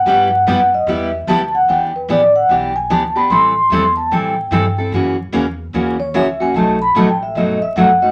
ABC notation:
X:1
M:4/4
L:1/8
Q:"Swing" 1/4=148
K:G
V:1 name="Vibraphone"
f2 f _e =e2 a f | [K:Em] g B d f g ^g a b | c'3 a g3 z | z4 z ^c e ^g |
a b (3a g e ^d e f d |]
V:2 name="Steel-string acoustic guitar"
[G,B,EG] z [G,B,EG] z [G,B,EG] z [G,B,EG] z | [K:Em] z8 | z8 | z8 |
z8 |]
V:3 name="Steel-string acoustic guitar"
[G,B,EG] z [G,B,EG] z [G,B,EG] z [G,B,EG] z | [K:Em] [E,B,DG] z [E,B,DG] z [E,B,DG] z [E,B,DG] [B,DG] | [E,G,CEA] z [E,G,CEA] z [E,G,CEA] z [E,G,CEA] [CEA] | [^C,E,^A,^CF] z [C,E,A,CF] z [C,E,A,CF] z [C,E,A,CF] [A,CF] |
[B,,F,A,^DF] z [B,,F,A,DF] z [B,,F,A,DF] z [B,,F,A,DF] [A,DF] |]
V:4 name="Upright bass" clef=bass
G,,2 F,,2 E,,2 D,,2 | [K:Em] E,,2 A,,,2 B,,,2 D,,2 | A,,,2 E,,2 A,,2 G,,2 | F,,2 E,,2 ^D,,2 ^C,,2 |
B,,,2 A,,,2 G,,, z F,,,2 |]